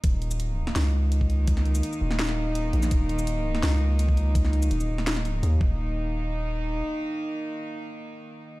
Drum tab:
HH |x-x-x---x---x-x-|x-x-x---x---x-x-|x-x-x---x---x-x-|x-x-x---x-x-x---|
SH |---x------------|---x-x---------x|---x------------|---x-x----------|
SD |-------oo-------|-o-----ooo-----o|-------oo-------|-o-----ooo------|
BD |o------------o--|o---------------|o------------o--|o-------------o-|

HH |----------------|----------------|
SH |----------------|----------------|
SD |----------------|----------------|
BD |----------------|----------------|